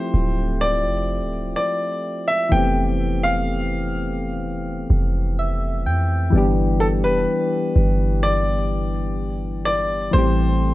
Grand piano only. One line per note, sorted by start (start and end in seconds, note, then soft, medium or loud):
0.00 0.64 C5 medium
0.61 1.55 D5 medium
1.56 2.30 D5 medium
2.28 2.50 E5 medium
2.52 3.25 G5 loud
3.23 5.81 F5 loud
6.80 6.86 A4 medium
7.04 8.19 B4 medium
8.23 9.64 D5 loud
9.65 10.10 D5 loud
10.13 10.74 C5 medium